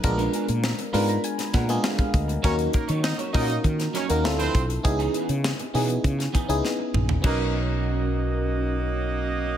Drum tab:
CC |----------------|----------------|----------------|x---------------|
HH |xxxx-xoxxxxx-xxx|xxxx-xoxxxxx-xxx|xxxx-xoxxxxx----|----------------|
SD |----o----oo-o---|----o----oo-o---|----o----o--o---|----------------|
T2 |----------------|----------------|--------------o-|----------------|
FT |----------------|----------------|---------------o|----------------|
BD |o---------o--oo-|o-o---o-o-----o-|o-------o-o-----|o---------------|